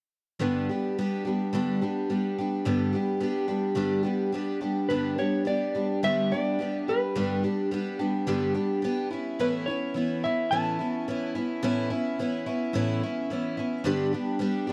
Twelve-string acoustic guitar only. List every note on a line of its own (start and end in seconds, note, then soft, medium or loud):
0.39 0.68 G2 medium
0.39 0.69 D3 medium
0.39 0.69 G3 medium
0.39 0.69 B3 medium
0.39 0.69 D4 medium
0.39 0.68 G4 medium
0.69 0.97 G3 soft
0.69 0.97 B3 soft
0.69 0.97 D4 soft
0.69 0.97 G4 soft
0.98 1.26 G3 medium
0.98 1.26 B3 medium
0.98 1.26 D4 medium
0.98 1.24 G4 medium
1.25 1.53 G3 soft
1.25 1.53 B3 soft
1.25 1.54 D4 soft
1.25 1.53 G4 soft
1.53 1.81 G2 medium
1.53 1.82 D3 medium
1.53 1.82 G3 medium
1.53 1.82 B3 medium
1.53 1.81 D4 medium
1.53 1.80 G4 medium
1.81 2.09 G3 soft
1.81 2.08 B3 soft
1.81 2.09 D4 medium
1.81 2.10 G4 soft
2.10 2.38 G3 medium
2.10 2.38 B3 soft
2.10 2.38 D4 medium
2.10 2.37 G4 medium
2.38 2.65 G3 soft
2.38 2.66 B3 soft
2.38 2.65 D4 soft
2.38 2.66 G4 soft
2.65 2.94 G2 medium
2.65 2.94 D3 medium
2.65 2.94 G3 medium
2.65 2.94 B3 medium
2.65 2.93 D4 medium
2.65 2.92 G4 medium
2.93 3.19 G3 soft
2.93 3.19 B3 soft
2.93 3.20 D4 soft
2.93 3.22 G4 soft
3.20 3.49 G3 medium
3.20 3.48 B3 medium
3.20 3.47 D4 medium
3.20 3.47 G4 medium
3.48 3.74 G3 soft
3.48 3.75 B3 soft
3.48 3.76 D4 soft
3.48 3.76 G4 medium
3.75 4.05 G2 medium
3.75 4.05 D3 medium
3.75 4.05 G3 medium
3.75 4.03 B3 medium
3.75 4.03 D4 medium
3.75 4.02 G4 medium
4.03 4.31 G3 soft
4.03 4.33 B3 soft
4.03 4.33 D4 medium
4.03 4.33 G4 medium
4.32 4.62 G3 medium
4.32 4.61 B3 medium
4.32 4.60 D4 medium
4.32 4.60 G4 medium
4.61 4.90 G3 soft
4.61 4.89 B3 soft
4.61 4.90 D4 soft
4.61 4.90 G4 soft
4.90 5.18 G2 medium
4.90 5.18 D3 medium
4.90 5.19 G3 medium
4.90 5.19 B3 medium
4.90 5.18 D4 medium
4.90 5.17 G4 medium
5.18 5.44 G3 soft
5.18 5.45 B3 soft
5.18 5.46 D4 soft
5.18 5.47 G4 soft
5.45 5.74 G3 medium
5.45 5.75 B3 medium
5.45 5.74 D4 medium
5.45 5.73 G4 medium
5.75 6.02 G3 soft
5.75 6.03 B3 soft
5.75 6.03 D4 soft
5.75 6.03 G4 soft
6.03 6.31 G2 medium
6.03 6.31 D3 medium
6.03 6.31 G3 medium
6.03 6.31 B3 medium
6.03 6.31 D4 medium
6.03 6.30 G4 medium
6.32 6.58 G3 soft
6.32 6.59 B3 soft
6.32 6.59 D4 soft
6.32 6.59 G4 soft
6.59 6.87 G3 soft
6.59 6.88 B3 medium
6.59 6.88 D4 soft
6.59 6.87 G4 medium
6.88 7.14 G3 soft
6.88 7.15 B3 soft
6.88 7.15 D4 soft
6.88 7.15 G4 soft
7.15 7.43 G2 medium
7.15 7.43 D3 medium
7.15 7.43 G3 medium
7.15 7.43 B3 medium
7.15 7.43 D4 medium
7.15 7.42 G4 medium
7.44 7.70 G3 soft
7.44 7.70 B3 soft
7.44 7.72 D4 soft
7.44 7.71 G4 soft
7.71 7.99 G3 medium
7.71 7.99 B3 medium
7.71 7.98 D4 medium
7.71 7.98 G4 medium
7.99 8.26 G3 soft
7.99 8.27 B3 soft
7.99 8.27 D4 medium
7.99 8.27 G4 soft
8.27 8.55 G2 medium
8.27 8.55 D3 medium
8.27 8.55 G3 medium
8.27 8.54 B3 medium
8.27 8.54 D4 medium
8.27 8.53 G4 medium
8.54 8.81 G3 soft
8.54 8.83 B3 soft
8.54 8.83 D4 medium
8.54 8.83 G4 medium
8.82 9.10 G3 medium
8.82 9.11 B3 medium
8.82 9.12 D4 medium
8.82 9.10 G4 medium
9.11 9.39 B3 soft
9.11 9.39 C#4 soft
9.11 9.39 E4 soft
9.39 9.67 A2 medium
9.39 9.67 E3 medium
9.39 9.67 B3 medium
9.39 9.67 C#4 medium
9.39 9.66 E4 medium
9.68 9.94 B3 soft
9.68 9.95 C#4 soft
9.68 9.95 E4 soft
9.94 10.22 E3 medium
9.94 10.23 B3 medium
9.94 10.24 C#4 medium
9.94 10.22 E4 medium
10.24 10.51 B3 soft
10.24 10.52 C#4 soft
10.24 10.51 E4 soft
10.52 10.79 A2 medium
10.52 10.79 E3 medium
10.52 10.79 B3 medium
10.52 10.79 C#4 medium
10.52 10.78 E4 medium
10.79 11.07 B3 soft
10.79 11.07 C#4 soft
10.79 11.07 E4 soft
11.08 11.35 E3 medium
11.08 11.35 B3 medium
11.08 11.35 C#4 medium
11.08 11.34 E4 medium
11.35 11.62 B3 soft
11.35 11.63 C#4 soft
11.35 11.63 E4 soft
11.63 11.90 A2 medium
11.63 11.90 E3 medium
11.63 11.90 B3 medium
11.63 11.90 C#4 medium
11.63 11.89 E4 loud
11.90 12.19 B3 soft
11.90 12.19 C#4 soft
11.90 12.18 E4 medium
12.19 12.47 E3 medium
12.19 12.47 B3 medium
12.19 12.46 C#4 medium
12.19 12.45 E4 medium
12.46 12.74 B3 soft
12.46 12.74 C#4 soft
12.46 12.74 E4 medium
12.73 13.02 A2 medium
12.73 13.02 E3 medium
12.73 13.02 B3 medium
12.73 13.03 C#4 medium
12.73 13.02 E4 medium
13.03 13.30 B3 soft
13.03 13.30 C#4 medium
13.03 13.31 E4 soft
13.30 13.58 E3 medium
13.30 13.58 B3 medium
13.30 13.58 C#4 medium
13.30 13.56 E4 medium
13.57 13.84 B3 soft
13.57 13.86 C#4 soft
13.57 13.85 E4 soft
13.84 14.13 G2 medium
13.84 14.13 D3 medium
13.84 14.14 G3 medium
13.84 14.13 B3 medium
13.84 14.13 D4 loud
13.84 14.12 G4 medium
14.13 14.38 G3 soft
14.13 14.39 B3 medium
14.13 14.40 D4 soft
14.13 14.40 G4 medium
14.39 14.68 G3 medium
14.39 14.69 B3 medium
14.39 14.68 D4 medium
14.39 14.66 G4 medium
14.67 14.73 B3 soft
14.67 14.73 D4 medium
14.67 14.73 G4 medium